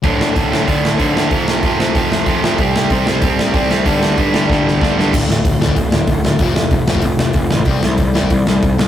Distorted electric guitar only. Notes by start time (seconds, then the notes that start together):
0.02 D2 A2 D3
0.35 D2 A2 D3
0.50 D2 A2 D3
0.65 D2 A2 D3
0.97 D2 A2 D3
1.14 D2 A2 D3
1.32 F2 C3 F3
1.64 F2 C3 F3
1.79 F2 C3 F3
1.95 F2 C3 F3
2.27 F2 C3 F3
2.42 F2 C3 F3
2.58 C3 G3 C4
2.90 C3 G3 C4
3.05 C3 G3 C4
3.21 C3 G3 C4
3.53 C3 G3 C4
3.69 C3 G3 C4
3.86 G2 D3 G3
4.16 G2 D3 G3
4.33 G2 D3 G3
4.49 G2 D3 G3
4.81 G2 D3 G3
4.97 G2 D3 G3
5.13 D2 A2 D3
5.28 D2 A2
5.44 D2 A2
5.60 D2 A2 D3
5.76 D2 A2
5.91 D2 A2
6.08 D2 A2
6.24 D2 A2
6.39 F2 C3 F3
6.55 F2 C3
6.71 F2 C3
6.86 F2 C3 F3
7.03 F2 C3
7.19 F2 C3
7.35 F2 C3
7.52 F2 C3
7.66 C3 G3 C4
7.83 C3 G3
8.00 C3 G3
8.14 C3 G3 C4
8.30 C3 G3
8.47 C3 G3
8.63 C3 G3
8.78 C3 G3